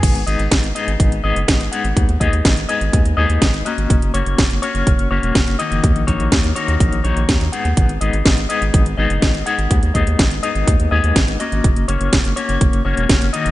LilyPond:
<<
  \new Staff \with { instrumentName = "Clean electric guitar" } { \time 4/4 \key gis \minor \tempo 4 = 124 <gis, b dis' gis' gis''>8 <gis, b dis' gis' dis''>4 <gis, b dis' gis' dis''>4 <gis, b dis' gis' dis''>4 <gis, b dis' gis' fis''>8~ | <gis, b dis' gis' fis''>8 <gis, b dis' gis' dis''>4 <gis, b dis' gis' dis''>4 <gis, b dis' gis' dis''>4 <ais cis' fis' dis''>8~ | <ais cis' fis' dis''>8 <ais cis' fis' cis''>4 <ais cis' fis' cis''>4 <ais cis' fis' cis''>4 <dis ais dis' fis' dis''>8~ | <dis ais dis' fis' dis''>8 <dis ais dis' fis' cis''>4 <dis ais dis' fis' cis''>4 <dis ais dis' fis' cis''>4 <gis, b dis' gis' fis''>8~ |
<gis, b dis' gis' fis''>8 <gis, b dis' gis' dis''>4 <gis, b dis' gis' dis''>4 <gis, b dis' gis' dis''>4 <gis, b dis' gis' fis''>8~ | <gis, b dis' gis' fis''>8 <gis, b dis' gis' dis''>4 <gis, b dis' gis' dis''>4 <gis, b dis' gis' dis''>4 <ais cis' fis' dis''>8~ | <ais cis' fis' dis''>8 <ais cis' fis' cis''>4 <ais cis' fis' cis''>4 <ais cis' fis' cis''>4 <dis ais dis' fis' dis''>8 | }
  \new Staff \with { instrumentName = "Analog synth bass" } { \clef bass \time 4/4 \key gis \minor gis,,16 gis,,16 gis,,16 gis,,16 gis,,16 gis,,16 r16 gis,,16 gis,,16 gis,,16 gis,,16 fis,,16 gis,,16 gis,,16 r16 gis,,16 | dis,16 dis,16 dis,16 dis,16 gis,,16 gis,,16 r16 gis,,16 dis,16 dis,16 dis,16 dis,16 gis,,16 gis,,16 r16 gis,,16 | fis,,16 fis,,16 fis,,16 fis,,16 fis,,16 fis,,16 r16 fis,,16 fis,,16 fis,,16 fis,,16 e,,16 fis,,16 fis,,16 r16 fis,,16 | dis,16 ais,,16 ais,,16 ais,,16 dis,16 dis,16 r16 dis,16 ais,,16 ais,,16 ais,,16 ais,,16 dis,16 dis,16 r16 dis,16 |
gis,,16 gis,,16 gis,,16 gis,,16 gis,,16 gis,,16 r16 gis,,16 gis,,16 gis,,16 gis,,16 fis,,16 gis,,16 gis,,16 r16 gis,,16 | dis,16 dis,16 dis,16 dis,16 gis,,16 gis,,16 r16 gis,,16 dis,16 dis,16 dis,16 dis,16 gis,,16 gis,,16 r16 gis,,16 | fis,,16 fis,,16 fis,,16 fis,,16 fis,,16 fis,,16 r16 fis,,16 fis,,16 fis,,16 fis,,16 e,,16 fis,,16 fis,,16 r16 fis,,16 | }
  \new DrumStaff \with { instrumentName = "Drums" } \drummode { \time 4/4 <cymc hh bd>16 hh16 hh16 hh16 <hh bd sn>16 hh16 hh16 hh16 <hh bd>16 hh8 hh16 <hh bd sn>16 hh16 hh16 hh16 | <hh bd>16 hh16 <hh bd>16 hh16 <hh bd sn>16 hh16 hh16 hh16 <hh bd>16 hh8 hh16 <hh bd sn>16 hh16 hh16 hh16 | <hh bd>16 hh16 hh16 hh16 <hh bd sn>16 hh16 hh16 hh16 <hh bd>16 hh8 hh16 <hh bd sn>16 hh16 hh16 hh16 | <hh bd>16 hh16 <hh bd>16 hh16 <hh bd sn>16 hh16 hh16 hh16 <hh bd>16 hh16 hh16 hh16 <hh bd sn>16 hh16 hh16 hh16 |
<hh bd>16 hh16 hh16 hh16 <hh bd sn>16 hh16 hh16 hh16 <hh bd>16 hh8 hh16 <hh bd sn>16 hh16 hh16 hh16 | <hh bd>16 hh16 <hh bd>16 hh16 <hh bd sn>16 hh16 hh16 hh16 <hh bd>16 hh8 hh16 <hh bd sn>16 hh16 hh16 hh16 | <hh bd>16 hh16 hh16 hh16 <hh bd sn>16 hh16 hh16 hh16 <hh bd>16 hh8 hh16 <hh bd sn>16 hh16 hh16 hh16 | }
>>